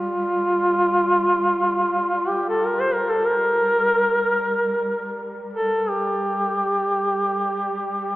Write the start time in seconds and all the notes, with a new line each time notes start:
Already playing: G3 F4
2.28 G4
2.49 A4
2.66 A#4
2.80 C5
2.93 A#4
3.09 A4
3.25 A#4
5.54 A4
5.90 G4
6.70 G3